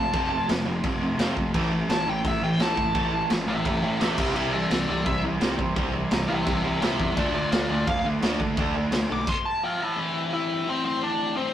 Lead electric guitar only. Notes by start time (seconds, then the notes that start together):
Already playing: A5
1.90 A5
2.09 G5
2.28 E5
2.44 G5
2.62 A5
3.49 E5 G5
3.65 E5 G5
3.83 E5 G5
4.01 G4 E5
4.19 G4 E5
4.35 G4 E5
4.52 A4 D5
4.71 A4 D5
4.89 A4 D5
5.05 E5
6.28 E5 G5
6.45 E5 G5
6.63 E5 G5
6.82 G4 E5
7.00 G4 E5
7.18 F4 D5
7.35 F4 D5
7.52 F4 D5
7.72 F4 D5
7.88 F5
9.12 D6
9.29 C6
9.45 A5
9.63 F3 F4 G5
9.82 E3 E4 A5
10.33 E3 E4
10.69 C4 C5
10.85 C4 C5
11.03 D4 D5
11.36 C4 C5